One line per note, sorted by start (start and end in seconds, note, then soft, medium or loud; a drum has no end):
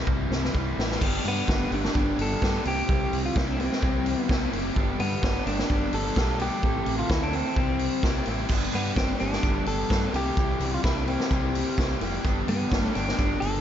0.06 0.26 C2 medium
0.06 0.54 C3 loud
0.06 0.51 E3 medium
0.06 0.32 G3 loud
0.06 0.30 C4 loud
0.06 0.28 E4 medium
0.06 kick loud
0.06 mid tom medium
0.29 0.49 C2 medium
0.29 0.53 G3 medium
0.29 0.54 C4 medium
0.29 0.55 E4 medium
0.29 snare medium
0.45 snare medium
0.53 0.73 C2 medium
0.53 0.99 E3 medium
0.53 1.00 G3 medium
0.53 1.01 C4 medium
0.53 1.01 E4 medium
0.53 kick loud
0.78 0.96 A1 medium
0.78 snare loud
0.91 snare medium
1.01 1.17 G1 medium
1.01 1.46 G2 loud
1.01 1.46 D3 loud
1.01 1.48 G3 medium
1.01 1.48 B3 loud
1.01 1.48 D4 loud
1.01 1.50 G4 loud
1.01 kick loud
1.01 crash loud
1.25 1.40 G2 medium
1.25 1.70 B3 loud
1.25 open hi-hat medium
1.47 1.64 G1 medium
1.47 1.69 G2 medium
1.47 1.70 D3 medium
1.47 1.72 G3 medium
1.47 1.72 B3 medium
1.47 1.72 D4 medium
1.47 1.73 G4 medium
1.47 kick loud
1.47 snare loud
1.70 1.87 G1 loud
1.70 1.94 G2 medium
1.70 1.94 D3 medium
1.70 1.96 G3 loud
1.70 1.96 B3 medium
1.70 1.96 D4 medium
1.70 2.21 D4 medium
1.70 1.97 G4 loud
1.70 open hi-hat medium
1.84 snare medium
1.95 2.11 G1 medium
1.95 2.40 G2 loud
1.95 2.41 D3 medium
1.95 2.42 G3 loud
1.95 2.42 B3 loud
1.95 2.43 D4 loud
1.95 2.44 G4 loud
1.95 kick loud
2.19 2.34 G1 loud
2.19 2.67 A4 loud
2.19 open hi-hat medium
2.41 2.64 G2 medium
2.41 2.58 G2 medium
2.41 2.64 D3 medium
2.41 2.65 G3 medium
2.41 2.65 B3 medium
2.41 2.65 D4 medium
2.41 2.67 G4 medium
2.41 kick loud
2.41 snare loud
2.65 2.81 C2 loud
2.65 2.88 C3 medium
2.65 2.90 G3 medium
2.65 2.89 C4 loud
2.65 2.90 E4 loud
2.65 3.25 G4 loud
2.65 2.91 G4 loud
2.65 open hi-hat medium
2.89 3.05 C2 loud
2.89 3.35 C3 loud
2.89 3.37 G3 loud
2.89 3.36 C4 loud
2.89 3.37 E4 loud
2.89 3.38 G4 loud
2.89 kick loud
3.12 3.28 C2 loud
3.12 open hi-hat medium
3.26 3.37 F4 medium
3.36 3.67 C2 medium
3.36 3.58 C3 medium
3.36 3.59 G3 medium
3.36 3.59 C4 medium
3.36 3.48 E4 loud
3.36 3.60 E4 medium
3.36 3.61 G4 medium
3.36 kick loud
3.36 snare loud
3.48 3.59 D4 medium
3.59 3.81 C3 medium
3.59 3.81 G3 medium
3.59 4.20 C4 medium
3.59 3.82 C4 medium
3.59 3.82 E4 loud
3.59 3.83 G4 loud
3.59 open hi-hat medium
3.72 snare medium
3.82 4.14 C2 medium
3.82 4.27 C3 loud
3.82 4.28 G3 loud
3.82 4.29 C4 medium
3.82 4.29 E4 loud
3.82 4.30 G4 loud
3.82 kick loud
4.06 open hi-hat medium
4.20 4.49 B3 medium
4.28 4.45 C2 loud
4.28 4.51 C3 medium
4.28 4.52 G3 medium
4.28 4.53 C4 medium
4.28 4.53 E4 loud
4.28 4.53 G4 medium
4.28 kick loud
4.28 snare loud
4.52 4.69 F#1 medium
4.52 4.75 C3 medium
4.52 4.75 G3 medium
4.52 4.75 C4 medium
4.52 4.76 E4 loud
4.52 4.76 G4 medium
4.52 open hi-hat medium
4.76 4.92 G1 medium
4.76 5.21 G2 loud
4.76 5.22 D3 medium
4.76 5.23 G3 loud
4.76 5.23 B3 loud
4.76 5.24 D4 loud
4.76 5.24 G4 loud
4.76 kick loud
5.00 5.16 G2 loud
5.00 5.44 B3 loud
5.00 open hi-hat medium
5.23 5.39 G1 medium
5.23 5.45 G2 medium
5.23 5.45 D3 loud
5.23 5.46 G3 medium
5.23 5.46 B3 loud
5.23 5.47 D4 medium
5.23 5.47 G4 medium
5.23 kick loud
5.23 snare loud
5.46 5.62 G1 loud
5.46 5.69 G2 loud
5.46 5.69 D3 medium
5.46 5.70 G3 loud
5.46 5.70 B3 loud
5.46 5.95 D4 loud
5.46 5.71 D4 medium
5.46 5.72 G4 loud
5.46 open hi-hat medium
5.59 snare medium
5.70 5.86 G1 medium
5.70 6.15 G2 loud
5.70 6.16 D3 loud
5.70 6.17 G3 medium
5.70 6.18 B3 loud
5.70 6.18 D4 loud
5.70 6.19 G4 loud
5.70 kick loud
5.93 6.09 G1 medium
5.93 6.41 A4 loud
5.93 open hi-hat medium
6.16 6.48 B1 medium
6.16 6.38 G2 medium
6.16 6.39 D3 medium
6.16 6.40 G3 medium
6.16 6.41 B3 medium
6.16 6.41 D4 medium
6.16 6.42 G4 medium
6.16 kick loud
6.16 snare loud
6.39 6.62 G2 medium
6.39 6.62 D3 medium
6.39 6.63 G3 medium
6.39 6.63 B3 medium
6.39 6.63 D4 medium
6.39 6.99 G4 loud
6.39 6.64 G4 loud
6.39 open hi-hat medium
6.63 6.79 A1 loud
6.63 7.08 A2 loud
6.63 7.08 E3 loud
6.63 7.09 C4 loud
6.63 7.10 E4 loud
6.63 7.10 A4 loud
6.63 kick loud
6.86 7.02 A1 loud
6.86 open hi-hat medium
6.99 7.10 F4 medium
7.09 7.41 D2 medium
7.09 7.31 A2 medium
7.09 7.32 E3 loud
7.09 7.33 C4 loud
7.09 7.23 E4 loud
7.09 7.33 E4 loud
7.09 7.33 A4 medium
7.09 kick loud
7.09 snare loud
7.23 7.35 D4 medium
7.32 7.55 A2 medium
7.32 7.55 E3 medium
7.32 7.56 C4 medium
7.32 8.28 C4 medium
7.32 7.56 E4 medium
7.32 7.56 A4 loud
7.32 open hi-hat medium
7.56 7.88 C2 medium
7.56 8.02 C3 medium
7.56 8.03 G3 loud
7.56 8.03 C4 medium
7.56 8.04 E4 loud
7.56 8.05 G4 loud
7.56 kick loud
7.79 open hi-hat medium
8.03 8.19 C2 medium
8.03 8.26 C3 medium
8.03 8.27 G3 medium
8.03 8.27 C4 medium
8.03 8.28 E4 medium
8.03 8.29 G4 medium
8.03 kick loud
8.03 snare loud
8.25 8.43 A1 medium
8.25 8.49 C3 medium
8.25 8.51 G3 medium
8.25 8.50 C4 medium
8.25 8.50 E4 medium
8.25 8.53 G4 medium
8.25 open hi-hat medium
8.49 8.66 G1 medium
8.49 8.95 G2 medium
8.49 8.97 D3 loud
8.49 8.98 G3 loud
8.49 8.98 B3 loud
8.49 kick loud
8.49 crash loud
8.49 shaker medium
8.53 8.98 D4 loud
8.53 9.00 G4 loud
8.72 8.90 G2 medium
8.72 8.97 B3 medium
8.72 open hi-hat medium
8.72 shaker medium
8.96 9.13 G1 medium
8.96 9.19 G2 medium
8.96 9.20 D3 medium
8.96 9.21 G3 loud
8.96 9.21 B3 loud
8.96 9.20 C4 medium
8.96 9.22 D4 loud
8.96 9.23 G4 medium
8.96 kick loud
8.96 snare loud
8.96 shaker medium
9.19 9.37 G1 loud
9.19 9.42 G2 medium
9.19 9.43 D3 medium
9.19 9.44 G3 medium
9.19 9.44 B3 loud
9.19 9.64 D4 medium
9.19 9.45 D4 medium
9.19 9.46 G4 medium
9.19 open hi-hat medium
9.19 shaker medium
9.33 snare medium
9.43 9.59 G1 medium
9.43 9.89 G2 medium
9.43 9.90 D3 loud
9.43 9.92 G3 loud
9.43 9.91 B3 loud
9.43 9.92 D4 loud
9.43 9.93 G4 loud
9.43 kick loud
9.43 shaker loud
9.66 9.83 G1 loud
9.66 10.15 A4 loud
9.66 open hi-hat medium
9.66 shaker medium
9.90 10.06 G2 medium
9.90 10.13 G2 medium
9.90 10.13 D3 medium
9.90 10.14 G3 medium
9.90 10.14 B3 medium
9.90 10.14 D4 medium
9.90 10.15 G4 medium
9.90 kick loud
9.90 snare loud
9.90 shaker medium
10.13 10.30 C2 loud
10.13 10.36 C3 loud
10.13 10.37 E3 medium
10.13 10.38 G3 loud
10.13 10.38 E4 loud
10.13 10.74 G4 loud
10.13 10.39 G4 loud
10.13 open hi-hat medium
10.13 shaker medium
10.37 10.53 C2 loud
10.37 10.83 C3 loud
10.37 10.83 E3 loud
10.37 10.85 G3 medium
10.37 10.85 E4 loud
10.37 10.86 G4 loud
10.37 kick loud
10.37 shaker medium
10.60 10.76 C2 loud
10.60 open hi-hat medium
10.60 shaker medium
10.74 10.84 F4 medium
10.84 11.16 C2 medium
10.84 11.06 C3 loud
10.84 11.07 E3 medium
10.84 11.09 G3 medium
10.84 10.96 E4 loud
10.84 11.08 E4 medium
10.84 11.10 G4 loud
10.84 kick loud
10.84 snare loud
10.84 shaker medium
10.95 11.07 D4 medium
11.08 11.30 C3 medium
11.08 11.31 E3 medium
11.08 11.31 G3 medium
11.08 11.98 C4 medium
11.08 11.32 E4 medium
11.08 11.32 G4 loud
11.08 open hi-hat medium
11.20 snare medium
11.30 11.62 C2 loud
11.30 11.76 C3 loud
11.30 11.76 E3 loud
11.30 11.77 G3 loud
11.30 11.77 E4 loud
11.30 11.78 G4 loud
11.30 kick loud
11.30 shaker medium
11.55 open hi-hat medium
11.55 shaker medium
11.77 11.94 C2 medium
11.77 12.00 C3 medium
11.77 12.00 E3 medium
11.77 12.01 G3 medium
11.77 12.02 E4 loud
11.77 12.02 G4 medium
11.77 kick loud
11.77 snare loud
11.77 shaker medium
12.01 12.17 F1 medium
12.01 12.23 C3 medium
12.01 12.24 E3 medium
12.01 12.24 G3 medium
12.01 12.24 E4 medium
12.01 12.25 G4 loud
12.01 open hi-hat medium
12.01 shaker medium
12.24 12.41 G1 medium
12.24 12.70 G2 loud
12.24 12.71 D3 loud
12.24 12.71 G3 medium
12.24 12.72 B3 loud
12.24 12.72 D4 loud
12.24 12.73 G4 loud
12.24 kick loud
12.24 shaker medium
12.48 12.64 G2 loud
12.48 12.92 B3 loud
12.48 open hi-hat medium
12.48 shaker medium
12.71 12.87 G1 loud
12.71 12.94 G2 loud
12.71 12.94 D3 medium
12.71 12.95 G3 medium
12.71 12.95 B3 loud
12.71 12.96 D4 medium
12.71 12.96 G4 loud
12.71 kick loud
12.71 snare loud
12.71 shaker medium
12.94 13.11 G1 loud
12.94 13.16 G2 medium
12.94 13.17 D3 medium
12.94 13.18 G3 loud
12.94 13.18 B3 medium
12.94 13.38 D4 medium
12.94 13.19 D4 medium
12.94 13.19 G4 loud
12.94 open hi-hat medium
12.94 shaker medium
13.08 snare medium
13.18 13.34 G1 medium
13.18 13.61 G2 loud
13.18 13.61 D3 medium
13.18 13.61 G3 loud
13.18 13.61 B3 loud
13.18 13.61 D4 loud
13.18 13.61 G4 loud
13.18 kick loud
13.18 shaker medium
13.40 13.58 G1 medium
13.40 13.61 A4 loud
13.40 open hi-hat medium
13.40 shaker medium